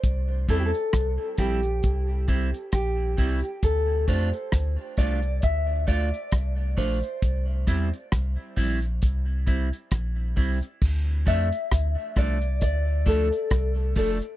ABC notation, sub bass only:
X:1
M:4/4
L:1/16
Q:"Swing 16ths" 1/4=67
K:Dm
V:1 name="Sub bass" clef=bass
C,,2 E,, z C,, z B,,,2 C,,2 C,, z B,,,2 C,, z | D,,2 F,, z D,, z C,,2 D,,2 D,, z C,,2 B,,, z | C,,2 E,, z C,, z B,,,2 C,,2 C,, z B,,,2 C,, z | D,,2 F,, z D,, z C,,2 D,,2 D,, z C,,2 F,,, z |]